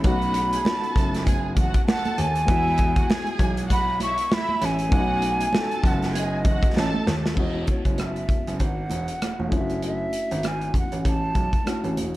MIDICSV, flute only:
0, 0, Header, 1, 2, 480
1, 0, Start_track
1, 0, Key_signature, 4, "major"
1, 0, Tempo, 611621
1, 34, Time_signature, 4, 2, 24, 8
1, 9547, End_track
2, 0, Start_track
2, 0, Title_t, "Flute"
2, 0, Program_c, 0, 73
2, 56, Note_on_c, 0, 83, 109
2, 971, Note_off_c, 0, 83, 0
2, 1476, Note_on_c, 0, 78, 103
2, 1716, Note_on_c, 0, 80, 120
2, 1728, Note_off_c, 0, 78, 0
2, 2670, Note_off_c, 0, 80, 0
2, 2921, Note_on_c, 0, 83, 114
2, 3137, Note_off_c, 0, 83, 0
2, 3163, Note_on_c, 0, 85, 103
2, 3402, Note_on_c, 0, 83, 104
2, 3414, Note_off_c, 0, 85, 0
2, 3649, Note_on_c, 0, 80, 115
2, 3661, Note_off_c, 0, 83, 0
2, 4604, Note_on_c, 0, 78, 93
2, 4616, Note_off_c, 0, 80, 0
2, 4834, Note_off_c, 0, 78, 0
2, 4847, Note_on_c, 0, 75, 84
2, 5524, Note_off_c, 0, 75, 0
2, 5802, Note_on_c, 0, 75, 86
2, 6017, Note_off_c, 0, 75, 0
2, 6034, Note_on_c, 0, 73, 67
2, 6287, Note_on_c, 0, 76, 79
2, 6299, Note_off_c, 0, 73, 0
2, 6756, Note_off_c, 0, 76, 0
2, 6763, Note_on_c, 0, 78, 98
2, 7444, Note_off_c, 0, 78, 0
2, 7503, Note_on_c, 0, 76, 85
2, 7709, Note_off_c, 0, 76, 0
2, 7742, Note_on_c, 0, 76, 95
2, 8218, Note_on_c, 0, 80, 90
2, 8230, Note_off_c, 0, 76, 0
2, 8443, Note_off_c, 0, 80, 0
2, 8461, Note_on_c, 0, 78, 87
2, 8669, Note_off_c, 0, 78, 0
2, 8693, Note_on_c, 0, 81, 101
2, 9371, Note_off_c, 0, 81, 0
2, 9547, End_track
0, 0, End_of_file